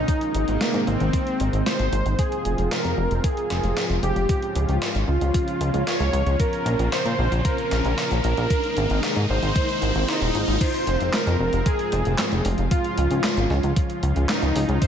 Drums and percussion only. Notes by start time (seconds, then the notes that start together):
0.08 kick, closed hi-hat
0.21 closed hi-hat
0.34 closed hi-hat
0.48 closed hi-hat
0.61 snare, closed hi-hat
0.74 closed hi-hat
0.87 closed hi-hat
1.00 closed hi-hat
1.13 kick, closed hi-hat
1.27 closed hi-hat
1.40 closed hi-hat
1.53 closed hi-hat
1.66 snare, closed hi-hat
1.79 closed hi-hat
1.93 closed hi-hat
2.06 closed hi-hat
2.19 kick, closed hi-hat
2.32 closed hi-hat
2.45 closed hi-hat
2.58 closed hi-hat
2.71 snare, closed hi-hat
2.85 closed hi-hat
3.11 closed hi-hat
3.24 kick, closed hi-hat
3.37 closed hi-hat
3.50 snare, closed hi-hat
3.64 closed hi-hat
3.77 snare, closed hi-hat
3.90 closed hi-hat
4.03 closed hi-hat
4.16 closed hi-hat
4.29 kick, closed hi-hat
4.42 closed hi-hat
4.55 closed hi-hat
4.69 closed hi-hat
4.82 snare, closed hi-hat
4.95 closed hi-hat
5.21 closed hi-hat
5.34 kick, closed hi-hat
5.48 closed hi-hat
5.61 closed hi-hat
5.74 closed hi-hat
5.87 snare, closed hi-hat
6.00 closed hi-hat
6.13 closed hi-hat
6.27 closed hi-hat
6.40 kick, closed hi-hat
6.53 closed hi-hat
6.66 closed hi-hat
6.79 closed hi-hat
6.92 snare, closed hi-hat
7.06 closed hi-hat
7.32 closed hi-hat
7.45 kick, closed hi-hat
7.58 closed hi-hat
7.71 snare, closed hi-hat
7.85 closed hi-hat
7.98 snare, closed hi-hat
8.11 closed hi-hat
8.24 closed hi-hat
8.37 closed hi-hat
8.50 kick, closed hi-hat
8.64 closed hi-hat
8.77 closed hi-hat
8.90 closed hi-hat
9.03 snare, closed hi-hat
9.16 closed hi-hat
9.42 closed hi-hat
9.56 kick, closed hi-hat
9.69 closed hi-hat
9.82 closed hi-hat
9.95 closed hi-hat
10.08 snare, closed hi-hat
10.22 closed hi-hat
10.35 closed hi-hat
10.48 closed hi-hat
10.61 kick, closed hi-hat, crash
10.74 closed hi-hat
10.87 closed hi-hat
11.00 closed hi-hat
11.13 snare, clap, closed hi-hat
11.27 closed hi-hat
11.53 closed hi-hat
11.66 kick, closed hi-hat
11.79 closed hi-hat
11.92 closed hi-hat
12.05 closed hi-hat
12.18 snare, clap, closed hi-hat
12.32 closed hi-hat
12.45 open hi-hat
12.58 closed hi-hat
12.71 kick, closed hi-hat
12.84 closed hi-hat
12.98 closed hi-hat
13.11 closed hi-hat
13.24 snare, clap, closed hi-hat
13.37 closed hi-hat
13.50 snare
13.63 closed hi-hat
13.76 kick, closed hi-hat
13.90 closed hi-hat
14.03 closed hi-hat
14.16 closed hi-hat
14.29 snare, clap, closed hi-hat
14.42 closed hi-hat
14.56 open hi-hat
14.69 closed hi-hat
14.82 kick, closed hi-hat